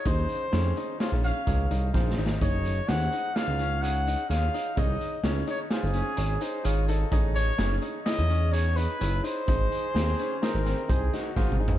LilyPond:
<<
  \new Staff \with { instrumentName = "Trumpet" } { \time 5/4 \key ges \lydian \tempo 4 = 127 c''2 c''8 f''4. r4 | des''4 ges''4 f''4 ges''4 f''4 | ees''4 r8 des''8 aes'2~ aes'8 r8 | r8 cis''4 r8 ees''4 cis''8 ces''4 c''8~ |
c''1 r4 | }
  \new Staff \with { instrumentName = "Flugelhorn" } { \time 5/4 \key ges \lydian r1 r4 | r1 r4 | r2. aes'8 c''8 des''8 a'8~ | a'16 r1 r8. |
r8 aes'4. bes'4 aes'8 ges'4 aes'8 | }
  \new Staff \with { instrumentName = "Tine electric piano" } { \time 5/4 \key ges \lydian <des' ees' aes'>4 <des' ees' aes'>4 <ees' aes' des''>4 <ees' aes' des''>4 <ees' aes' c''>4 | <ees' aes' des''>4 <ees' aes' c''>4 <ees' aes' des''>4 <ees' aes' des''>4 <ees' aes' des''>4 | <ees' aes' des''>4 <ees' aes' des''>4 <ees' aes' c''>4 <ees' aes' des''>4 <ees' aes' des''>4 | <ees' aes' cis''>4 <ees' aes' cis''>4 <ees' aes' cis''>4 <ees' aes' cis''>4 <ees' aes' cis''>4 |
<ees' aes' c''>4 <ees' aes' c''>4 <ees' aes' c''>4 <ees' aes' c''>4 <ees' aes' c''>4 | }
  \new Staff \with { instrumentName = "Grand piano" } { \time 5/4 \key ges \lydian ees'4 des'8 ees'8 f'8 des'4 ees'8 f'8 ees'8 | ees'4 des'8 ees'8 f'8 des'4 ees'8 f'8 ees'8 | ees'4 des'8 ees'8 f'8 des'4 ees'8 f'8 ees'8 | ees'4 cis'8 ees'8 e'8 cis'4 ees'8 e'8 ees'8 |
ees'4 c'8 des'8 ees'8 c'4 ees'8 f'8 ees'8 | }
  \new Staff \with { instrumentName = "Analog synth bass" } { \clef bass \time 5/4 \key ges \lydian ees,8 r8 f,8 r8. bes,,8 r16 des,8 c,8 bes,,8 aes,,8 | ges,,4 ees,8 r8. des,4.~ des,16 ees,8 r8 | c,8 r8 des,8 r8. ges,,8 r16 aes,,8 r8 aes,,4 | a,,4 ges,,8 r8. e,4.~ e,16 ges,,8 r8 |
aes,,8 r8 ees,8 r8. aes,,8 r16 c,8 r8 aes,,4 | }
  \new DrumStaff \with { instrumentName = "Drums" } \drummode { \time 5/4 <hh bd>8 hh8 <hh sn>8 hh8 <hh sn>8 hh8 <hh bd sn>8 hh8 \tuplet 3/2 { <bd sn>8 sn8 sn8 } | <hh bd>8 hh8 <hh sn>8 hh8 <hh sn>8 hh8 hh8 hh8 <hh sn>8 hh8 | <hh bd>8 hh8 <hh sn>8 hh8 <hh sn>8 hh8 hh8 hh8 hh8 hh8 | <hh bd>8 hh8 <hh sn>8 hh8 <hh sn>8 hh8 hh8 hh8 hh8 hh8 |
<hh bd>8 hh8 <hh sn>8 hh8 <hh sn>8 <hh sn>8 <hh bd>8 <hh sn>8 \tuplet 3/2 { <bd sn>8 toml8 tomfh8 } | }
>>